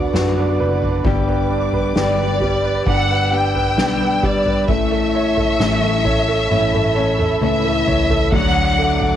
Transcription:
0.00 1.01 D3 medium
0.00 0.13 B3 soft
0.00 0.14 B3 medium
0.00 0.13 D4 soft
0.00 0.37 D4 soft
0.00 0.13 F#4 soft
0.00 1.01 F#4 soft
0.00 0.55 B4 soft
0.00 4.64 B4 medium
0.00 4.64 D5 medium
0.00 1.01 F#5 medium
0.00 1.01 D6 medium
0.13 0.61 F#2 loud
0.13 1.04 D3 medium
0.13 1.05 B3 medium
0.13 1.02 B3 soft
0.13 1.05 D4 medium
0.13 1.05 F#4 medium
0.13 snare loud
0.37 0.81 D4 medium
0.59 1.02 F#1 medium
0.59 1.04 B4 medium
0.82 1.04 D4 soft
0.82 floor tom medium
1.04 1.92 G1 medium
1.04 1.94 G2 medium
1.04 1.94 D3 medium
1.04 1.95 G3 medium
1.04 2.40 G3 medium
1.04 1.95 B3 medium
1.04 1.96 D4 medium
1.04 4.65 G4 medium
1.04 1.96 G4 medium
1.04 2.85 D6 medium
1.04 kick medium
1.04 floor tom medium
1.29 1.72 B4 soft
1.51 1.95 D4 medium
1.73 2.18 B4 medium
1.73 floor tom medium
1.95 2.83 G1 medium
1.95 2.41 G2 medium
1.95 2.41 D3 medium
1.95 2.41 G3 medium
1.95 2.41 B3 medium
1.95 2.86 D4 soft
1.95 2.40 D4 medium
1.95 2.39 G4 medium
1.95 2.84 D5 medium
1.95 snare loud
2.19 2.63 B4 soft
2.40 4.19 G3 medium
2.40 2.84 G3 soft
2.40 2.86 B3 soft
2.40 2.87 D4 soft
2.40 2.86 G4 soft
2.40 floor tom medium
2.65 3.09 B4 medium
2.85 3.78 G1 loud
2.85 3.31 G3 medium
2.85 3.32 B3 soft
2.85 3.31 D4 medium
2.85 3.30 G4 soft
2.85 3.33 F#5 loud
2.85 4.67 E6 medium
2.85 kick medium
3.10 3.54 B4 soft
3.31 3.76 G3 soft
3.31 3.77 B3 soft
3.31 3.76 D4 medium
3.31 3.77 D4 soft
3.31 3.77 G4 soft
3.31 4.24 G5 medium
3.55 3.99 B4 soft
3.55 floor tom medium
3.77 4.23 B1 medium
3.77 4.68 G2 medium
3.77 4.67 D3 medium
3.77 4.68 G3 medium
3.77 4.69 B3 medium
3.77 4.66 D4 soft
3.77 4.69 D4 medium
3.77 4.69 G4 medium
3.77 snare loud
4.01 4.45 B4 soft
4.23 4.68 G1 medium
4.23 4.67 G3 medium
4.23 4.69 D5 medium
4.23 kick medium
4.46 4.68 B4 medium
4.46 floor tom medium
4.68 5.58 A2 medium
4.68 5.59 E3 medium
4.68 5.60 A3 medium
4.68 8.28 A3 medium
4.68 5.60 C#4 medium
4.68 8.29 A4 medium
4.68 5.61 A4 medium
4.68 8.29 C#5 medium
4.68 8.29 E5 medium
4.68 7.37 E5 medium
4.68 6.48 C#6 medium
4.68 kick medium
4.68 floor tom medium
4.92 5.36 A4 medium
5.15 6.03 C#5 medium
5.37 5.82 A4 medium
5.37 floor tom medium
5.59 6.46 A1 loud
5.59 6.05 A2 medium
5.59 6.05 E3 medium
5.59 6.05 A3 medium
5.59 6.05 C#4 medium
5.59 6.50 E4 medium
5.59 6.03 A4 medium
5.59 snare loud
5.83 6.27 A4 soft
6.05 6.50 A3 soft
6.05 6.51 C#4 medium
6.05 6.50 A4 medium
6.05 6.95 C#5 medium
6.05 floor tom medium
6.28 6.73 A4 soft
6.50 7.38 A1 medium
6.50 6.95 E3 medium
6.50 6.96 A3 medium
6.50 6.96 C#4 medium
6.50 7.40 E4 medium
6.50 6.94 A4 medium
6.50 8.30 B5 medium
6.50 high tom soft
6.73 7.17 A4 soft
6.73 high tom soft
6.95 7.41 A3 medium
6.95 7.42 C#4 medium
6.95 7.41 A4 medium
6.95 7.86 C#5 medium
7.19 7.63 A4 soft
7.19 mid tom medium
7.41 7.84 C#2 medium
7.41 8.32 A2 medium
7.41 8.32 E3 medium
7.41 8.32 A3 medium
7.41 8.33 C#4 medium
7.41 8.30 E4 soft
7.41 8.34 A4 medium
7.41 8.29 E5 medium
7.41 mid tom medium
7.65 8.09 A4 soft
7.87 8.29 C#2 medium
7.87 8.31 C#5 soft
7.87 floor tom medium
8.10 8.32 A4 medium
8.10 floor tom medium
8.32 9.16 D2 medium
8.32 9.16 D3 medium
8.32 9.16 F#3 medium
8.32 9.16 A3 medium
8.32 9.16 D4 medium
8.32 9.16 F#4 medium
8.32 9.16 A4 medium
8.32 9.16 D5 medium
8.32 9.16 F#5 medium
8.32 9.16 F#5 loud
8.32 9.16 D6 medium
8.32 kick medium
8.32 floor tom loud
8.32 crash medium
8.78 9.16 A3 soft
9.01 floor tom medium

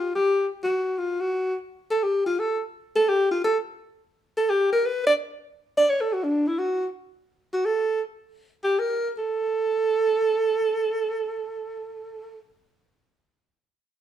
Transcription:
0.00 0.15 F4 medium
0.15 0.48 G4 medium
0.64 1.00 F#4 medium
0.98 1.22 F4 medium
1.20 1.55 F#4 medium
1.91 2.05 A4 medium
2.03 2.25 G4 medium
2.26 2.41 F4 medium
2.39 2.61 A4 medium
2.96 3.10 A4 medium
3.09 3.31 G4 medium
3.31 3.42 F4 medium
3.44 3.57 A4 medium
4.37 4.51 A4 medium
4.49 4.71 G4 medium
4.72 4.87 A#4 medium
4.86 5.06 B4 medium
5.07 5.14 D5 medium
5.78 5.91 D5 loud
5.89 6.02 C#5 medium
6.01 6.15 A4 medium
6.13 6.25 F#4 medium
6.24 6.49 D4 medium
6.47 6.60 E4 medium
6.59 6.87 F#4 medium
7.53 7.67 F#4 medium
7.66 8.01 A4 medium
8.64 8.80 G4 medium
8.79 9.11 A#4 medium
9.18 12.41 A4 medium

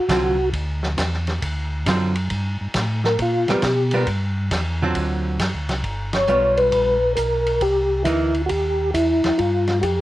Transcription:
0.00 0.49 F#4 medium
0.08 0.52 C2 medium
0.08 0.36 D3 medium
0.08 0.36 F#3 medium
0.08 0.36 C4 medium
0.08 0.36 F4 medium
0.08 kick soft
0.08 snare medium
0.08 hi-hat pedal medium
0.08 ride medium
0.53 0.96 D2 medium
0.53 kick soft
0.53 ride medium
0.83 snare medium
0.97 1.40 E2 loud
0.97 kick soft
0.97 snare medium
0.97 hi-hat pedal medium
0.97 ride medium
1.13 snare soft
1.27 snare soft
1.27 ride soft
1.42 1.85 D2 medium
1.42 kick soft
1.42 ride medium
1.86 2.29 F#2 medium
1.86 2.13 D3 medium
1.86 2.14 F#3 medium
1.86 2.14 C4 medium
1.86 2.14 F4 medium
1.86 kick soft
1.86 snare medium
1.86 hi-hat pedal medium
1.86 ride medium
2.16 ride medium
2.30 2.58 G2 medium
2.30 kick soft
2.30 ride medium
2.61 2.68 G2 soft
2.74 3.17 A2 loud
2.74 kick soft
2.74 snare medium
2.74 hi-hat pedal medium
2.74 ride medium
3.04 3.19 A#4 loud
3.04 snare medium
3.18 3.46 A#2 medium
3.18 3.49 F4 medium
3.18 kick soft
3.18 ride medium
3.48 3.56 A#2 soft
3.48 3.62 G3 medium
3.48 3.62 B3 medium
3.48 3.63 F4 medium
3.48 4.04 G4 medium
3.48 3.63 A#4 medium
3.48 snare medium
3.48 ride soft
3.62 4.06 B2 loud
3.62 kick soft
3.62 snare medium
3.62 hi-hat pedal medium
3.62 ride medium
3.91 4.07 G3 medium
3.91 4.07 B3 medium
3.91 4.07 F4 medium
3.91 4.07 A#4 medium
3.91 ride medium
4.07 4.50 G2 medium
4.07 kick soft
4.07 ride medium
4.51 4.94 E2 loud
4.51 kick soft
4.51 snare medium
4.51 hi-hat pedal medium
4.51 ride medium
4.82 5.38 D3 medium
4.82 5.38 F#3 medium
4.82 5.38 C4 medium
4.82 5.38 F4 medium
4.95 5.38 D2 medium
4.95 kick soft
4.95 ride medium
5.39 5.54 F#2 medium
5.39 kick soft
5.39 snare medium
5.39 hi-hat pedal medium
5.39 ride medium
5.54 5.69 D2 medium
5.69 5.83 C2 medium
5.69 snare medium
5.69 ride medium
5.84 6.27 G1 medium
5.84 kick soft
5.84 ride medium
6.13 6.60 C#5 loud
6.13 snare medium
6.13 ride medium
6.27 6.71 B1 medium
6.27 6.96 G3 medium
6.27 6.97 B3 medium
6.27 6.97 F4 medium
6.27 hi-hat pedal medium
6.57 7.13 B4 loud
6.57 ride soft
6.72 7.16 A#1 medium
6.72 kick soft
6.72 ride medium
7.15 7.60 B1 medium
7.15 7.62 A#4 medium
7.15 kick soft
7.15 hi-hat pedal medium
7.15 ride medium
7.46 ride soft
7.61 8.04 C2 medium
7.61 8.03 G4 medium
7.61 kick soft
7.61 ride medium
8.04 8.49 D2 medium
8.04 8.32 E3 medium
8.04 8.32 A#3 soft
8.04 8.33 D#4 medium
8.04 8.42 E4 medium
8.04 kick soft
8.04 hi-hat pedal medium
8.04 ride medium
8.34 ride soft
8.46 8.93 D#2 medium
8.46 8.51 F#4 medium
8.46 8.91 G4 medium
8.46 kick soft
8.46 ride medium
8.94 9.22 E2 medium
8.94 9.40 E4 medium
8.94 kick soft
8.94 hi-hat pedal medium
8.94 ride medium
9.24 9.32 E2 soft
9.24 snare medium
9.24 ride medium
9.38 9.81 G2 medium
9.38 9.79 F4 medium
9.38 kick soft
9.38 ride medium
9.67 snare soft
9.67 ride soft
9.81 10.01 F2 loud
9.81 9.84 F#4 medium
9.81 10.01 G4 medium
9.81 kick soft
9.81 hi-hat pedal medium
9.81 ride medium

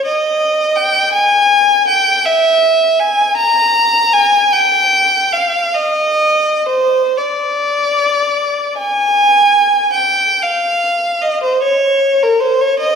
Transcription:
0.06 0.76 D#5 medium
0.76 1.13 G5 medium
1.13 1.86 G#5 medium
1.88 2.24 G5 medium
2.25 3.00 E5 medium
3.00 3.37 G#5 medium
3.37 4.12 A#5 loud
4.13 4.52 G#5 medium
4.53 5.33 G5 medium
5.33 5.75 F5 medium
5.75 6.66 D#5 medium
6.66 7.16 C5 medium
7.17 8.79 D5 medium
8.77 9.88 G#5 medium
9.93 10.42 G5 medium
10.43 11.22 F5 medium
11.22 11.42 D#5 medium
11.43 11.62 C5 medium
11.63 12.20 C#5 medium
12.23 12.41 A#4 medium
12.40 12.60 C5 medium
12.61 12.79 C#5 medium
12.80 12.95 D#5 medium

